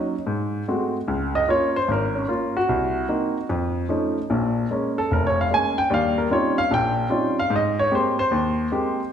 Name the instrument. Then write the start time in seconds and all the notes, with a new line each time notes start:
grand piano
Already playing: F#3 C#4 D#4
0.27 G#2
0.68 G#3 A3 C4 F#4
1.08 C#2
1.35 D#5
1.48 A#3 C#4 F4 C#5
1.76 C5
1.88 G#1 A#4
2.15 C#4
2.28 A#3 C#4 F4
2.57 F#4
2.69 C2
3.09 A#3 C4 D#4
3.49 F2
3.89 F3 A3 C#4 D#4
4.30 A#1 A#2
4.71 G#3 A#3 C#4
4.98 A4
5.11 F1 A#4
5.27 C#5
5.41 F5
5.50 G#3 A#3 C#4 G#5
5.78 G5
5.90 D#2 G3 F5
6.18 A#4
6.31 G3 C4 C#4 D#4 F4 C#5
6.58 F5
6.71 A#1 A#2 G5
7.09 G3 C4 C#4 D#4 F4
7.39 F5
7.50 G#2
7.56 D#5
7.79 C#5
7.91 G#3 A#3 C4 G4
7.95 C5
8.19 C5
8.31 D#2
8.72 G#3 A#3 C4 G4